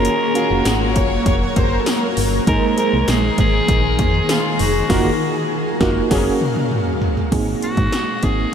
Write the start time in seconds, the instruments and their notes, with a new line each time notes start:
Already playing: ambient pad F#3 A#3 A#4, fm electric piano A#3 C#4 F4 F#4 A#4, analog polysynth F#4 A#4 C#5, tenor saxophone A#4
0.05 closed hi-hat
0.34 fm electric piano A#3 C#4 F#4 A#4 F5, violin section G#4, closed hi-hat
0.51 fm bass F1, violin section F#4
0.65 fm bass G#1, snare, closed hi-hat, tambourine
0.96 fm bass F#1, violin section C#5, kick, closed hi-hat
1.26 fm bass F1, violin section C#5, kick, closed hi-hat
1.41 violin section C#5
1.56 fm bass F#1, violin section C5, kick, closed hi-hat
1.80 violin section A4
1.86 violin section A#4, snare, closed hi-hat, tambourine
2.17 fm bass G1, open hi-hat
2.47 fm bass G#1, ambient pad D#3 G#4, fm electric piano G#3 A#3 D#4 G#4 A#4, analog polysynth D#4 G#4 C5, tenor saxophone A#4, kick, closed hi-hat
2.77 fm electric piano G#3 A#3 D#4 G#4 A#4, tenor saxophone A#4, closed hi-hat
2.93 fm bass C2
3.08 fm bass A#1, tenor saxophone G#4, snare, closed hi-hat, tambourine
3.38 fm bass G#1, tenor saxophone G#4, kick, closed hi-hat
3.68 fm bass A#1, kick, closed hi-hat
3.99 fm bass F2, kick, closed hi-hat
4.29 tenor saxophone F4, snare, closed hi-hat, tambourine
4.59 fm bass F1, tenor saxophone F#4, open hi-hat
4.89 fm bass F#1, ambient pad F#3 F5, fm electric piano A#3 D#4 F4 F#4 A#4, analog polysynth A#3 F#4 A#4, kick, snare, crash
5.80 fm bass F#1, fm electric piano A#3 D#4 F4 F#4 A#4, analog polysynth A#3 F#4 A#4, kick, snare
6.10 fm bass F#1, ambient pad A#2 G#3 F#4, fm electric piano A#3 C#4 F#4 G#4, analog polysynth A#3 C#4 G#4, kick, snare, crash
6.18 fm electric piano A#4
6.41 mid tom
6.56 mid tom
6.71 mid tom
7.02 floor tom
7.17 floor tom
7.32 fm bass G#1, fm electric piano A#3 C4 D#4 G#4, kick, closed hi-hat, crash
7.62 tenor saxophone F#4, closed hi-hat
7.77 fm bass G#2, kick, closed hi-hat
7.92 snare, closed hi-hat
8.22 fm bass G#1, fm electric piano A#3 C4 D#4 G#4, tenor saxophone G#4, kick, closed hi-hat